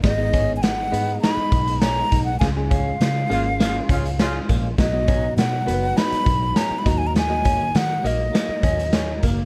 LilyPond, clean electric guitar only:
\new Staff \with { instrumentName = "Clean electric guitar" } { \time 4/4 \key dis \minor \tempo 4 = 101 r8 cis'8 r8 b8 dis'4 cis'8 dis'8 | r8 cis'8 r8 ais8 ais8 cis'8 cis'8 ais8 | r8 cis'8 r8 b8 dis'4 cis'8 dis'8 | r8 cis'8 r8 ais8 ais8 cis'8 cis'8 ais8 | }